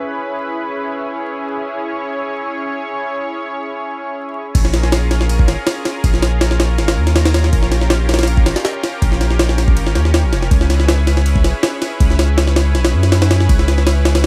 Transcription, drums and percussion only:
4.55 kick, crash, ride
4.65 snare
4.74 snare, ride
4.83 snare
4.92 snare, ride
5.11 snare, ride
5.21 snare
5.29 ride
5.39 kick
5.48 snare, ride
5.67 snare, ride
5.85 snare, ride
6.04 kick, ride
6.14 snare
6.22 snare, ride
6.41 snare, ride
6.51 snare
6.60 snare, ride
6.78 snare, ride
6.88 snare, ride
7.07 snare, ride
7.16 snare, ride
7.25 snare, ride
7.34 snare, ride
7.44 snare
7.53 kick, ride
7.63 snare
7.72 snare, ride
7.81 snare
7.90 snare, ride
8.09 snare, ride
8.14 snare, ride
8.19 snare, ride
8.23 snare, ride
8.27 ride
8.37 kick
8.46 snare, ride
8.56 snare, ride
8.65 snare, ride
8.84 snare, ride
9.02 kick, ride
9.12 snare
9.21 snare, ride
9.31 snare
9.39 snare, ride
9.49 snare
9.58 snare, ride
9.68 kick
9.77 ride
9.87 snare
9.95 snare, ride
10.05 snare
10.14 snare, ride
10.33 snare, ride
10.42 snare
10.51 kick, ride
10.61 snare
10.70 snare, ride
10.80 snare
10.88 snare, ride
11.07 snare, ride
11.17 snare
11.26 ride
11.36 kick
11.44 snare, ride
11.63 snare, ride
11.82 snare, ride
12.00 kick, ride
12.10 snare
12.19 snare, ride
12.38 snare, ride
12.47 snare
12.56 snare, ride
12.75 snare, ride
12.85 snare, ride
13.03 snare, ride
13.12 snare, ride
13.22 snare, ride
13.31 snare, ride
13.40 snare
13.49 kick, ride
13.59 snare
13.68 snare, ride
13.78 snare
13.87 snare, ride
14.05 snare, ride
14.15 snare, ride

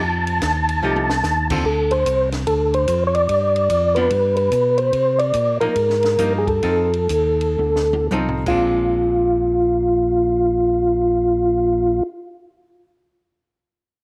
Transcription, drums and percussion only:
0.27 ride
0.42 kick, snare, hi-hat pedal, ride
0.69 ride
0.96 high tom
1.10 snare
1.23 snare, hi-hat pedal
1.50 kick, crash
1.65 kick
1.91 ride
2.06 kick, hi-hat pedal, ride
2.32 snare, ride
2.47 kick, ride
2.74 ride
2.88 kick, hi-hat pedal, ride
3.15 ride
3.29 kick, ride
3.56 ride
3.70 kick, hi-hat pedal, ride
3.96 ride
4.10 kick, ride
4.36 ride
4.52 kick, hi-hat pedal, ride
4.78 ride
4.93 kick, ride
5.19 ride
5.33 kick, hi-hat pedal, ride
5.61 ride
5.76 kick, ride
5.90 snare
6.03 snare, ride
6.19 kick, hi-hat pedal, ride
6.47 kick, ride
6.63 kick, ride
6.93 ride
7.09 kick, hi-hat pedal, ride
7.41 ride
7.59 high tom
7.76 snare
7.93 high tom
8.11 hi-hat pedal, mid tom
8.29 floor tom
8.46 kick, crash

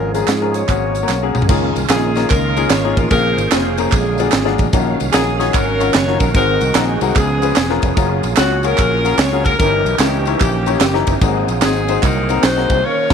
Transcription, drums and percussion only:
0.14 closed hi-hat, tambourine
0.28 snare, clap, closed hi-hat, tambourine
0.54 closed hi-hat, tambourine
0.69 kick, clap, closed hi-hat, tambourine
0.95 closed hi-hat, tambourine
1.09 snare, clap, tambourine
1.35 mid tom, tambourine
1.42 floor tom
1.49 kick, crash, tambourine
1.76 ride, tambourine
1.89 snare, clap, ride, tambourine
2.16 snare, ride, tambourine
2.30 kick, clap, ride, tambourine
2.57 ride, tambourine
2.70 snare, clap, ride, tambourine
2.97 kick, ride, tambourine
3.11 kick, ride, tambourine
3.38 ride, tambourine
3.51 snare, clap, ride, tambourine
3.77 ride, tambourine
3.92 kick, clap, ride, tambourine
4.18 ride, tambourine
4.32 snare, clap, ride, tambourine
4.47 snare
4.58 kick, ride, tambourine
4.73 kick, ride, tambourine
5.00 ride, tambourine
5.13 snare, clap, ride, tambourine
5.40 snare, ride, tambourine
5.54 kick, clap, ride, tambourine
5.80 ride, tambourine
5.94 snare, clap, ride, tambourine
6.07 snare
6.20 kick, ride, tambourine
6.35 kick, ride, tambourine
6.61 ride, tambourine
6.75 snare, clap, ride, tambourine
7.01 ride, tambourine
7.16 kick, clap, ride, tambourine
7.42 ride, tambourine
7.56 snare, clap, ride, tambourine
7.70 snare
7.82 kick, ride, tambourine
7.97 kick, ride, tambourine
8.23 ride, tambourine
8.37 snare, clap, ride, tambourine
8.63 ride, tambourine
8.78 kick, clap, ride, tambourine
9.05 ride, tambourine
9.19 snare, clap, ride, tambourine
9.45 kick, ride, tambourine
9.60 kick, ride, tambourine
9.86 ride, tambourine
9.99 snare, clap, ride, tambourine
10.25 ride, tambourine
10.40 kick, clap, ride, tambourine
10.66 ride, tambourine
10.81 snare, clap, ride, tambourine
10.95 snare
11.07 kick, ride, tambourine
11.21 kick, ride, tambourine
11.48 ride, tambourine
11.61 snare, clap, ride, tambourine
11.88 ride, tambourine
12.03 kick, clap, ride, tambourine
12.29 ride, tambourine
12.43 snare, clap, ride, tambourine
12.58 snare
12.70 kick, ride, tambourine
13.10 kick, snare, crash

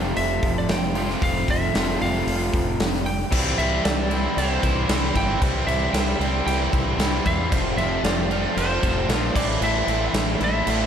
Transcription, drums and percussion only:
0.17 open hi-hat
0.43 kick, open hi-hat
0.69 snare, open hi-hat
0.83 snare
0.95 open hi-hat
1.10 snare
1.22 kick, open hi-hat
1.48 kick, open hi-hat
1.75 snare, open hi-hat
2.02 open hi-hat
2.28 open hi-hat
2.54 kick, open hi-hat
2.80 snare, open hi-hat
2.94 snare
3.06 open hi-hat
3.32 kick, crash
3.59 crash
3.85 snare, crash
4.11 crash
4.38 crash
4.63 kick, crash
4.89 snare, crash
5.15 kick, crash
5.42 kick, crash
5.68 crash
5.94 snare, crash
6.21 crash
6.47 crash
6.73 kick, crash
7.00 snare, crash
7.26 kick, crash
7.52 kick, crash
7.78 crash
8.04 snare, crash
8.31 crash
8.57 crash
8.83 kick, crash
9.09 snare, crash
9.36 kick, crash
9.62 crash
9.88 crash
10.14 snare, crash
10.41 crash
10.67 crash

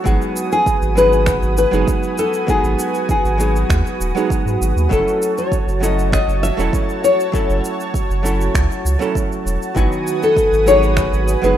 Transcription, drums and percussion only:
0.06 kick, shaker
0.22 shaker
0.36 shaker
0.52 shaker
0.66 kick, shaker
0.82 shaker
0.97 shaker
1.13 shaker
1.26 finger snap, kick, shaker
1.43 shaker
1.57 shaker
1.73 shaker
1.88 kick, shaker
2.03 shaker
2.18 shaker
2.33 shaker
2.48 kick, shaker
2.64 shaker
2.79 shaker
2.95 shaker
3.09 kick, shaker
3.25 shaker
3.40 shaker
3.56 shaker
3.70 finger snap, kick, shaker
3.87 shaker
4.01 shaker
4.17 shaker
4.30 kick, shaker
4.47 shaker
4.62 shaker
4.78 shaker
4.91 kick, shaker
5.08 shaker
5.22 shaker
5.38 shaker
5.52 kick, shaker
5.69 shaker
5.83 shaker
5.99 shaker
6.12 finger snap, kick, shaker
6.29 shaker
6.44 shaker
6.59 shaker
6.73 kick, shaker
6.89 shaker
7.04 shaker
7.20 shaker
7.34 kick, shaker
7.50 shaker
7.65 shaker
7.80 shaker
7.94 kick, shaker
8.11 shaker
8.26 shaker
8.41 shaker
8.55 finger snap, kick, shaker
8.72 shaker
8.86 shaker
9.02 shaker
9.15 kick, shaker
9.32 shaker
9.47 shaker
9.62 shaker
9.76 kick, shaker
9.92 shaker
10.07 shaker
10.23 shaker
10.37 kick, shaker
10.53 shaker
10.67 shaker
10.83 shaker
10.97 finger snap, kick, shaker
11.13 shaker
11.28 shaker
11.44 shaker

